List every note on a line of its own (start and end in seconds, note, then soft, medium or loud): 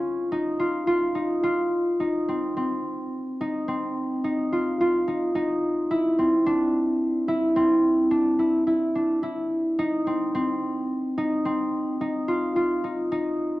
0.00 2.34 C#4 medium
0.00 0.31 D#4 medium
0.00 0.59 F4 medium
0.32 1.15 D#4 medium
0.60 0.87 F4 medium
0.87 1.43 F4 medium
1.15 2.00 D#4 medium
1.43 3.96 F4 medium
2.00 3.40 D#4 medium
2.28 2.56 C4 medium
2.57 3.68 C4 medium
3.41 4.24 D#4 medium
3.68 6.18 C4 medium
4.24 5.07 D#4 medium
4.52 4.80 F4 medium
4.81 5.97 F4 medium
5.08 5.35 D#4 medium
5.35 5.97 D#4 medium
5.91 7.28 E4 medium
6.19 7.56 C4 medium
6.46 8.10 D4 medium
7.28 8.39 E4 medium
7.56 10.06 C4 medium
8.11 8.95 D4 medium
8.39 8.66 E4 medium
8.67 9.22 E4 medium
8.95 9.85 D4 medium
9.23 9.85 E4 medium
9.79 11.17 D#4 medium
10.07 10.34 C4 medium
10.35 11.45 C4 medium
11.18 12.00 D#4 medium
11.45 13.60 C4 medium
12.01 12.84 D#4 medium
12.28 12.55 F4 medium
12.56 13.60 F4 medium
12.84 13.11 D#4 medium
13.12 13.60 D#4 medium